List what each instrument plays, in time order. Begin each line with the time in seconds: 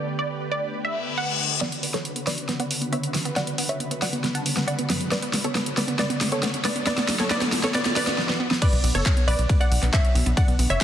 Already playing: analog synth pad D3 A3 B3 G4 B4, synth pluck D5
0.19 synth pluck D5
0.52 synth pluck D5
0.74 reverse cymbal
0.85 synth pluck E5
1.18 synth pluck F#5
1.61 analog synth pad C#3 D3 B3 F#4 B4, synth arpeggio sound B3, synth pluck B4 D5, snare, closed hi-hat, riser
1.72 closed hi-hat
1.83 synth arpeggio sound B3, open hi-hat
1.94 synth arpeggio sound B3, synth pluck A4 C#5, snare, closed hi-hat
2.05 closed hi-hat
2.16 synth arpeggio sound B3, closed hi-hat
2.27 synth arpeggio sound B3, synth pluck B4 D5, snare, open hi-hat
2.38 closed hi-hat
2.49 synth arpeggio sound B3, snare, closed hi-hat
2.59 synth arpeggio sound B3, synth pluck D5 F#5, closed hi-hat
2.71 open hi-hat
2.81 synth arpeggio sound B3, closed hi-hat
2.92 synth arpeggio sound B3, synth pluck C#5 E5, closed hi-hat
3.03 closed hi-hat
3.14 synth arpeggio sound B3, snare, open hi-hat
3.25 synth arpeggio sound B3, closed hi-hat
3.36 synth pluck D5 F#5, snare, closed hi-hat
3.47 synth arpeggio sound B3, closed hi-hat
3.58 synth arpeggio sound B3, open hi-hat
3.69 synth pluck C#5 E5, closed hi-hat
3.80 synth arpeggio sound B3, closed hi-hat
3.91 synth arpeggio sound B3, closed hi-hat
4.02 synth pluck D5 F#5, snare, open hi-hat
4.13 synth arpeggio sound B3, closed hi-hat
4.24 synth arpeggio sound B3, snare, closed hi-hat
4.35 synth pluck F#5 A5, closed hi-hat
4.46 synth arpeggio sound B3, open hi-hat
4.57 synth arpeggio sound B3, snare, closed hi-hat
4.67 synth pluck D5 F#5, closed hi-hat
4.79 synth arpeggio sound B3, closed hi-hat
4.90 synth arpeggio sound B3, snare, open hi-hat, high conga
5.01 closed hi-hat
5.12 synth arpeggio sound B3, synth pluck B4 D5, snare, closed hi-hat
5.22 synth arpeggio sound B3, closed hi-hat
5.33 snare, open hi-hat
5.44 synth arpeggio sound B3, synth pluck A4 C#5, closed hi-hat
5.55 synth arpeggio sound B3, snare, closed hi-hat
5.66 closed hi-hat
5.77 synth arpeggio sound B3, synth pluck B4 D5, snare, open hi-hat
5.88 synth arpeggio sound B3, closed hi-hat
5.99 synth arpeggio sound B3, synth pluck B4 D5, snare, closed hi-hat
6.10 synth arpeggio sound B3, closed hi-hat
6.21 snare, open hi-hat
6.32 synth arpeggio sound B3, synth pluck A4 C#5, closed hi-hat
6.43 synth arpeggio sound B3, snare, closed hi-hat
6.54 closed hi-hat
6.65 synth arpeggio sound B3, synth pluck B4 D5, snare, open hi-hat
6.76 synth arpeggio sound B3, closed hi-hat
6.87 analog synth pad F#3 A3 A4, synth arpeggio sound B3, synth pluck B4 D5, snare, closed hi-hat
6.97 synth arpeggio sound B3, snare, closed hi-hat
7.08 snare, open hi-hat
7.20 synth arpeggio sound B3, synth pluck A4 C#5, snare, closed hi-hat
7.30 synth arpeggio sound B3, synth pluck B4 D5, snare, closed hi-hat
7.41 synth arpeggio sound B3, snare, closed hi-hat
7.52 snare, open hi-hat
7.63 synth arpeggio sound B3, synth pluck A4 C#5, snare, closed hi-hat
7.74 synth arpeggio sound B3, synth pluck B4 D5, snare, closed hi-hat
7.85 synth arpeggio sound B3, snare, closed hi-hat
7.96 synth arpeggio sound B3, synth pluck B4 D5, snare, open hi-hat
8.07 synth arpeggio sound B3, snare, closed hi-hat
8.18 synth arpeggio sound B3, snare
8.29 synth arpeggio sound B3, snare
8.40 synth arpeggio sound B3
8.51 synth arpeggio sound B3, snare
8.62 analog synth pad D3 F#3 B3 D4 F#4, synth arpeggio sound B3, synth pluck B4 D5, grand piano D5, kick, closed hi-hat, ride, crash
8.73 analog synth bass B1, closed hi-hat
8.84 analog synth bass B1, synth arpeggio sound B3, open hi-hat
8.95 analog synth bass F#1, synth arpeggio sound B3, synth pluck A4 C#5, grand piano C#5, closed hi-hat
9.06 kick, clap, closed hi-hat, ride
9.17 synth arpeggio sound B3, closed hi-hat
9.27 analog synth bass B1, synth arpeggio sound B3, synth pluck B4 D5, grand piano D5, open hi-hat
9.38 analog synth bass B1, closed hi-hat
9.49 synth arpeggio sound B3, kick, closed hi-hat, ride
9.60 synth arpeggio sound B3, synth pluck D5 F#5, grand piano F#5, closed hi-hat
9.71 analog synth bass B1, open hi-hat
9.82 analog synth bass B1, synth arpeggio sound B3, clap, closed hi-hat
9.93 synth arpeggio sound B3, synth pluck C#5 E5, grand piano E5, kick, clap, closed hi-hat, ride
10.05 closed hi-hat
10.15 analog synth bass B1, synth arpeggio sound B3, open hi-hat
10.26 analog synth bass B1, synth arpeggio sound B3, closed hi-hat
10.37 synth pluck D5 F#5, grand piano F#5, kick, closed hi-hat, ride
10.48 analog synth bass B1, synth arpeggio sound B3, closed hi-hat
10.59 analog synth bass B1, synth arpeggio sound B3, open hi-hat
10.70 analog synth bass F#1, synth pluck C#5 E5, grand piano E5, closed hi-hat